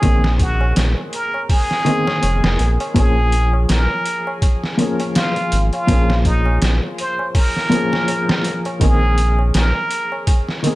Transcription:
0.00 0.73 A#1 loud
0.00 0.02 D#3 medium
0.00 1.82 D#3 medium
0.00 0.03 A#3 medium
0.00 1.83 A#3 medium
0.00 0.05 C4 medium
0.00 0.07 G#4 medium
0.00 0.36 G#4 medium
0.00 kick loud
0.00 closed hi-hat medium
0.00 tabla na medium
0.05 1.83 C4 medium
0.05 1.84 G#4 medium
0.24 snare medium
0.24 tabla na soft
0.39 0.74 F#4 medium
0.39 kick medium
0.39 closed hi-hat medium
0.61 tabla na medium
0.76 0.95 A#1 medium
0.76 snare loud
0.76 closed hi-hat medium
0.76 tabla na medium
0.98 tabla na soft
1.13 1.48 A#4 medium
1.13 closed hi-hat medium
1.34 tabla na medium
1.49 2.85 G#4 loud
1.49 kick loud
1.49 open hi-hat medium
1.49 tabla na medium
1.70 snare soft
1.70 tabla na soft
1.85 2.91 D#3 medium
1.85 2.92 A#3 medium
1.85 2.93 C4 medium
1.85 closed hi-hat medium
1.89 2.94 G#4 loud
2.07 snare soft
2.07 tabla na medium
2.23 2.41 F1 medium
2.23 closed hi-hat medium
2.23 tabla na medium
2.44 2.58 F1 medium
2.44 snare loud
2.44 tabla na soft
2.59 2.78 A#1 medium
2.59 closed hi-hat medium
2.80 closed hi-hat soft
2.80 tabla na medium
2.94 3.66 A#1 loud
2.94 4.74 F3 medium
2.94 4.75 A#3 medium
2.94 4.76 C#4 medium
2.94 3.64 G#4 medium
2.94 kick loud
2.94 closed hi-hat medium
2.94 tabla na medium
2.99 4.77 G#4 medium
3.17 tabla na soft
3.32 closed hi-hat medium
3.53 tabla na medium
3.69 3.88 A#1 medium
3.69 4.37 A#4 medium
3.69 snare loud
3.69 closed hi-hat medium
3.69 tabla na medium
3.90 tabla na soft
4.06 closed hi-hat medium
4.27 tabla na medium
4.42 kick loud
4.42 closed hi-hat medium
4.42 tabla na medium
4.64 snare soft
4.64 tabla na soft
4.78 5.84 F3 medium
4.78 5.85 A#3 medium
4.78 5.86 C#4 medium
4.78 closed hi-hat medium
4.82 5.87 G#4 medium
5.00 closed hi-hat soft
5.00 tabla na medium
5.15 5.67 F4 medium
5.15 snare loud
5.15 closed hi-hat medium
5.15 tabla na medium
5.36 closed hi-hat soft
5.36 tabla na soft
5.52 5.71 G#1 medium
5.52 closed hi-hat medium
5.73 6.21 F4 medium
5.73 closed hi-hat soft
5.73 tabla na medium
5.87 6.59 A#1 loud
5.87 7.67 F3 medium
5.87 7.68 A#3 medium
5.87 7.69 C#4 medium
5.87 kick loud
5.87 closed hi-hat medium
5.87 tabla na medium
5.92 7.69 G#4 medium
6.10 snare medium
6.10 tabla na soft
6.25 6.59 D#4 medium
6.25 kick medium
6.25 closed hi-hat medium
6.46 tabla na medium
6.62 6.80 A#1 medium
6.62 snare loud
6.62 closed hi-hat medium
6.62 tabla na medium
6.83 tabla na soft
6.98 7.33 C5 medium
6.98 closed hi-hat medium
7.19 tabla na medium
7.35 8.69 A#4 loud
7.35 kick loud
7.35 open hi-hat medium
7.35 tabla na medium
7.56 snare soft
7.56 tabla na soft
7.70 8.77 F3 medium
7.70 8.77 A#3 medium
7.70 8.78 C#4 medium
7.70 closed hi-hat medium
7.74 8.79 G#4 loud
7.92 snare soft
7.92 tabla na medium
8.08 closed hi-hat medium
8.08 tabla na medium
8.29 snare loud
8.29 tabla na soft
8.44 closed hi-hat medium
8.65 closed hi-hat soft
8.65 tabla na medium
8.80 9.52 A#1 loud
8.80 10.60 D#3 medium
8.80 10.60 A#3 medium
8.80 10.61 C4 medium
8.80 9.49 G#4 loud
8.80 kick loud
8.80 closed hi-hat medium
8.80 tabla na medium
8.84 10.62 G#4 medium
9.03 tabla na soft
9.18 closed hi-hat medium
9.39 tabla na medium
9.54 9.73 A#1 medium
9.54 10.22 A#4 medium
9.54 snare loud
9.54 closed hi-hat medium
9.54 tabla na medium
9.75 tabla na soft
9.91 closed hi-hat medium
10.12 tabla na medium
10.27 kick loud
10.27 closed hi-hat medium
10.27 tabla na medium
10.47 snare soft
10.47 tabla na soft
10.62 10.75 D#3 medium
10.62 10.75 A#3 medium
10.62 10.75 C4 medium
10.62 closed hi-hat medium
10.67 10.75 G#4 medium

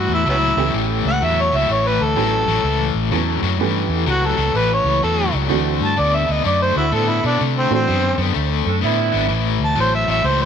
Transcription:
0.00 0.23 A2 medium
0.00 0.23 E3 medium
0.00 0.12 F#4 medium
0.08 0.24 E2 medium
0.14 0.28 E4 medium
0.25 0.54 C#2 medium
0.25 0.53 A2 medium
0.25 0.54 F#3 medium
0.30 0.36 B3 medium
0.30 0.36 C#4 medium
0.30 0.74 E4 medium
0.57 0.73 C#2 medium
0.57 0.72 A2 medium
0.57 1.19 E3 medium
0.57 0.73 F#3 medium
0.57 1.18 A3 medium
0.57 1.18 B3 medium
0.57 1.19 C#4 medium
0.57 1.19 G4 medium
0.73 1.02 A1 medium
0.73 1.18 A2 medium
0.73 1.18 E3 medium
1.05 1.20 C#2 medium
1.05 1.26 F#5 loud
1.21 1.49 E2 medium
1.21 1.49 A2 medium
1.21 1.49 F#3 medium
1.21 1.42 E5 medium
1.41 1.58 C#5 medium
1.52 1.68 C#2 medium
1.52 1.67 A2 medium
1.52 1.68 F#3 medium
1.56 1.74 E5 medium
1.68 1.97 A1 medium
1.68 2.13 A2 medium
1.68 2.13 E3 medium
1.68 1.89 C#5 medium
1.87 2.05 B4 medium
2.00 2.15 D2 medium
2.00 2.94 A4 loud
2.16 2.45 A1 medium
2.16 2.44 A2 medium
2.16 2.44 E3 medium
2.16 2.44 F#3 medium
2.16 2.44 A3 medium
2.16 2.44 B3 medium
2.16 2.44 C#4 soft
2.16 2.44 G4 medium
2.48 2.63 A1 medium
2.48 2.63 A2 medium
2.48 2.63 F#3 medium
2.63 2.92 C#2 medium
2.63 3.08 A2 medium
2.63 3.09 E3 medium
2.94 3.10 A1 medium
3.11 3.40 E2 medium
3.11 3.39 A2 medium
3.11 3.40 E3 medium
3.11 3.39 F#3 medium
3.11 3.40 A3 soft
3.11 3.40 B3 soft
3.11 3.40 C#4 soft
3.11 3.40 A4 medium
3.42 3.58 F#2 medium
3.42 3.57 A2 medium
3.42 3.58 F#3 medium
3.59 3.87 G2 medium
3.59 4.03 A2 medium
3.59 4.04 E3 medium
3.59 4.93 E3 medium
3.59 4.93 A3 medium
3.59 4.93 B3 medium
3.59 4.93 C#4 medium
3.59 4.93 G4 medium
3.88 4.05 E2 medium
4.06 4.35 C#2 medium
4.06 4.34 A2 medium
4.06 4.34 F#3 medium
4.06 4.27 F#4 medium
4.26 4.58 A4 medium
4.37 4.53 C#2 medium
4.37 4.53 A2 medium
4.37 4.53 F#3 medium
4.54 4.82 A1 medium
4.54 4.99 A2 medium
4.54 4.99 E3 loud
4.54 4.71 B4 medium
4.73 5.03 C#5 medium
4.84 5.00 C#2 medium
5.02 5.30 E2 medium
5.02 5.30 A2 medium
5.02 5.30 F#3 medium
5.02 5.33 A4 medium
5.31 5.49 C#2 medium
5.31 5.47 A2 medium
5.31 5.48 F#3 medium
5.49 5.78 D2 medium
5.49 5.93 D3 medium
5.49 5.77 E3 medium
5.49 5.94 A3 medium
5.49 5.77 A3 medium
5.49 5.77 C4 medium
5.49 5.77 D4 medium
5.49 5.78 F#4 medium
5.80 5.96 G2 medium
5.80 6.01 A5 medium
5.96 6.26 D2 medium
5.96 6.24 D3 medium
5.96 6.25 B3 medium
5.96 6.17 D5 loud
6.15 6.32 E5 medium
6.27 6.44 D2 medium
6.27 6.43 D3 medium
6.27 6.43 B3 medium
6.27 6.45 D#5 medium
6.44 6.73 F#2 medium
6.44 6.88 D3 medium
6.44 6.89 A3 medium
6.44 6.61 D5 medium
6.62 6.76 C5 medium
6.75 6.91 D2 medium
6.75 6.85 C4 medium
6.75 6.85 D4 medium
6.75 6.95 E4 medium
6.75 6.86 F#4 medium
6.91 7.20 A2 medium
6.91 7.19 D3 medium
6.91 7.20 B3 medium
6.91 7.52 C4 medium
6.91 7.52 D4 medium
6.91 7.52 A4 medium
6.91 7.10 A4 medium
7.09 7.24 E4 medium
7.23 7.39 B2 medium
7.23 7.38 D3 medium
7.23 7.39 B3 medium
7.23 7.40 D4 medium
7.39 7.68 C3 medium
7.39 7.84 D3 medium
7.39 7.84 A3 medium
7.57 7.72 C4 medium
7.71 7.86 A2 medium
7.71 7.86 E3 medium
7.71 7.86 A3 medium
7.71 7.86 C4 medium
7.71 8.19 C4 medium
7.71 7.86 D4 soft
7.71 7.86 F#4 medium
7.87 8.16 F#2 medium
7.87 8.15 D3 medium
7.87 8.15 B3 medium
8.18 8.33 F#2 medium
8.18 8.32 D3 medium
8.18 8.33 B3 medium
8.34 8.63 D2 medium
8.34 8.78 D3 medium
8.34 8.79 A3 medium
8.65 8.81 F#2 medium
8.65 8.76 C4 medium
8.65 8.76 D4 medium
8.65 8.76 A4 medium
8.81 9.11 A2 medium
8.81 9.09 D3 medium
8.81 9.09 B3 medium
8.81 9.30 C4 medium
8.81 9.30 D4 medium
8.81 9.30 E4 loud
9.12 9.29 G#1 medium
9.12 9.28 D3 medium
9.12 9.28 B3 medium
9.29 9.57 A1 medium
9.29 9.73 A2 medium
9.29 9.73 E3 medium
9.60 9.76 D2 medium
9.65 9.79 A5 medium
9.75 10.05 A1 medium
9.75 10.04 A2 medium
9.75 10.04 F#3 medium
9.81 9.94 C5 loud
9.95 10.09 E5 medium
10.07 10.23 A1 medium
10.07 10.23 A2 medium
10.07 10.23 F#3 medium
10.07 10.28 E5 loud
10.24 10.45 C#2 medium
10.24 10.45 A2 medium
10.24 10.45 E3 loud
10.24 10.41 C5 medium
10.42 10.45 C5 loud

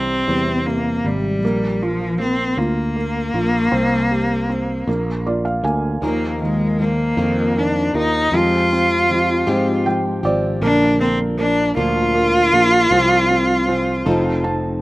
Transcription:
0.00 0.24 C2 medium
0.00 0.66 C3 soft
0.00 1.39 E3 medium
0.00 0.27 G3 medium
0.00 0.68 C4 medium
0.28 1.01 E2 medium
0.28 1.04 G3 medium
0.66 1.41 C3 soft
0.66 1.07 A#3 medium
1.04 1.43 G#1 medium
1.04 1.84 G3 medium
1.04 1.42 G3 soft
1.43 2.54 A#1 medium
1.43 2.18 A#3 medium
1.82 2.20 F3 medium
1.82 2.57 F4 soft
2.20 2.95 A#3 soft
2.20 2.60 C4 medium
2.57 3.30 D2 medium
2.57 5.26 A#3 medium
2.57 3.33 F4 soft
2.96 3.71 A#3 soft
3.34 3.70 A#1 medium
3.34 3.72 F4 soft
3.72 4.84 C2 medium
3.72 4.48 C4 medium
4.11 4.85 G4 soft
4.49 4.87 C4 soft
4.87 5.60 A#1 medium
4.87 5.63 A#3 medium
5.26 6.01 F4 soft
5.26 5.44 D5 soft
5.45 5.63 F5 medium
5.64 6.00 D2 medium
5.64 6.02 A#3 soft
5.64 6.00 G#5 medium
6.02 7.13 D#2 medium
6.02 6.79 D#3 medium
6.02 6.40 D#3 medium
6.02 6.78 F3 medium
6.02 6.79 A#3 medium
6.02 6.39 A#3 medium
6.02 6.80 F4 medium
6.02 6.80 A#4 medium
6.41 6.78 D#3 soft
6.41 6.83 G#3 medium
6.79 7.17 D#3 soft
6.79 7.17 F3 soft
6.79 7.17 A#3 soft
6.79 7.60 A#3 medium
6.79 7.17 F4 medium
6.79 7.16 A#4 medium
7.17 7.90 F2 medium
7.17 7.55 D#3 soft
7.17 7.95 D#3 medium
7.17 8.32 F3 medium
7.17 7.95 A#3 medium
7.17 7.95 F4 medium
7.17 7.92 A#4 medium
7.57 7.93 D#3 soft
7.57 7.96 D4 medium
7.94 8.30 D#2 medium
7.94 8.32 D#3 soft
7.94 8.33 A#3 soft
7.94 8.36 D#4 medium
7.94 8.33 F4 soft
7.94 8.32 A#4 medium
8.32 9.43 F2 medium
8.32 9.14 F3 medium
8.32 9.10 F3 medium
8.32 9.07 G#3 medium
8.32 9.08 C4 medium
8.32 9.10 F4 medium
8.32 9.87 F4 medium
8.32 9.10 G4 medium
8.73 9.48 C4 medium
9.08 9.85 F3 soft
9.08 9.47 G#3 medium
9.08 9.47 C4 soft
9.08 9.46 F4 medium
9.08 9.46 G4 medium
9.47 10.20 G#2 medium
9.47 10.26 F3 medium
9.47 10.25 G#3 medium
9.47 10.24 C4 medium
9.47 10.23 C4 soft
9.47 10.24 F4 medium
9.47 10.22 G4 medium
9.86 10.60 F3 soft
9.86 10.21 G5 medium
10.23 10.60 G#1 medium
10.23 10.61 C4 soft
10.23 10.62 C4 soft
10.23 10.63 F4 medium
10.23 10.62 G4 medium
10.23 10.60 D5 medium
10.61 11.73 A#1 medium
10.61 11.38 A#2 medium
10.61 11.39 D3 medium
10.61 11.37 F3 medium
10.61 10.99 A#3 medium
10.61 11.38 A#3 medium
10.61 11.38 D4 medium
10.61 10.98 D4 medium
10.61 11.39 A#4 medium
11.01 11.38 A#3 soft
11.01 11.18 C4 medium
11.38 11.76 F3 soft
11.38 11.76 A#3 medium
11.38 11.75 A#3 medium
11.38 11.75 D4 medium
11.38 11.76 D4 medium
11.38 11.75 A#4 medium
11.76 12.49 D2 medium
11.76 12.54 A#2 medium
11.76 12.54 D3 medium
11.76 12.55 F3 medium
11.76 12.13 A#3 medium
11.76 12.54 A#3 medium
11.76 12.53 D4 medium
11.76 14.41 F4 loud
11.76 12.52 A#4 medium
12.15 12.51 A#3 medium
12.53 12.90 A#1 medium
12.53 12.91 F3 soft
12.53 12.90 A#3 medium
12.53 12.92 A#3 medium
12.53 12.92 D4 soft
12.53 12.91 A#4 soft
12.91 14.02 C2 medium
12.91 13.68 C3 medium
12.91 13.67 F3 medium
12.91 13.29 C4 medium
12.91 13.67 C4 medium
12.91 13.69 F4 medium
12.91 13.69 G#4 medium
13.30 13.67 C4 medium
13.67 14.06 F3 medium
13.67 14.05 C4 medium
13.67 14.06 C4 medium
13.67 14.06 F4 medium
13.67 14.06 G#4 medium
14.06 14.79 F1 loud
14.06 14.82 F3 medium
14.06 14.82 C4 medium
14.06 14.82 D#4 medium
14.06 14.81 A4 medium
14.44 14.82 C4 soft
14.44 14.80 A5 medium

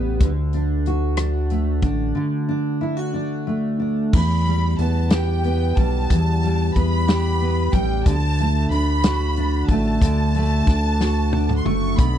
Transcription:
0.00 0.22 A1 medium
0.00 0.22 E2 medium
0.00 0.27 G3 medium
0.00 0.28 B3 medium
0.00 0.28 G4 medium
0.20 1.84 D2 loud
0.20 2.14 D3 medium
0.20 kick loud
0.20 closed hi-hat medium
0.53 1.18 D4 medium
0.53 closed hi-hat soft
0.86 2.81 F#4 medium
0.86 closed hi-hat soft
1.17 1.82 D4 medium
1.17 cross-stick loud
1.17 closed hi-hat medium
1.50 3.46 A3 medium
1.50 closed hi-hat soft
1.82 2.14 A1 medium
1.82 2.48 D4 medium
1.82 kick medium
1.82 closed hi-hat soft
2.15 4.13 D3 medium
2.49 3.13 D4 medium
2.81 2.97 E4 medium
2.97 4.20 F#4 medium
3.14 3.78 D4 medium
3.47 4.20 A3 medium
3.80 4.20 D4 medium
4.13 4.75 E2 loud
4.13 6.10 E2 medium
4.13 4.76 B5 loud
4.13 kick loud
4.13 crash loud
4.46 5.77 G3 medium
4.46 closed hi-hat soft
4.78 5.73 E2 loud
4.78 5.43 B3 medium
4.78 5.12 A5 medium
4.78 closed hi-hat soft
5.10 7.07 G4 medium
5.10 5.78 G5 medium
5.10 snare loud
5.10 closed hi-hat medium
5.44 6.75 B3 medium
5.44 closed hi-hat soft
5.77 6.08 B1 medium
5.77 6.43 G3 medium
5.77 6.75 A5 medium
5.77 kick medium
5.77 closed hi-hat soft
6.10 6.71 E2 loud
6.10 8.06 E2 medium
6.10 kick loud
6.10 closed hi-hat loud
6.43 7.73 G3 medium
6.43 closed hi-hat soft
6.75 7.69 E2 loud
6.75 7.41 B3 medium
6.75 7.73 B5 loud
6.75 kick medium
6.75 closed hi-hat soft
7.08 8.12 G4 medium
7.08 snare loud
7.08 closed hi-hat medium
7.40 8.13 B3 medium
7.40 closed hi-hat soft
7.73 8.04 A1 medium
7.73 8.13 G3 medium
7.73 8.06 G5 medium
7.73 kick medium
7.73 closed hi-hat soft
8.06 8.67 D2 loud
8.06 10.02 D3 medium
8.06 8.67 A5 loud
8.06 kick loud
8.06 closed hi-hat loud
8.38 9.69 A3 medium
8.38 closed hi-hat soft
8.70 9.64 D2 loud
8.70 9.37 D4 medium
8.70 9.69 B5 loud
8.70 closed hi-hat medium
9.03 11.00 F#4 medium
9.03 snare loud
9.03 closed hi-hat loud
9.36 10.68 D4 medium
9.36 closed hi-hat soft
9.68 9.99 A1 loud
9.68 10.35 A3 medium
9.68 11.55 A5 loud
9.68 kick medium
9.68 closed hi-hat soft
10.01 10.63 D2 loud
10.01 12.18 D3 medium
10.01 kick loud
10.01 closed hi-hat loud
10.34 11.64 A3 medium
10.34 closed hi-hat soft
10.67 11.62 D2 loud
10.67 11.34 D4 medium
10.67 kick loud
10.67 snare soft
10.67 closed hi-hat soft
11.00 12.18 F#4 medium
11.00 snare medium
11.33 12.18 D4 medium
11.33 high tom medium
11.49 mid tom medium
11.57 11.65 C6 medium
11.65 11.96 F#1 medium
11.65 12.05 A3 medium
11.65 11.99 C#6 medium
11.65 mid tom medium
11.98 12.18 B1 loud
11.98 12.18 B2 medium
11.98 12.18 B5 loud
11.98 kick loud
11.98 closed hi-hat medium

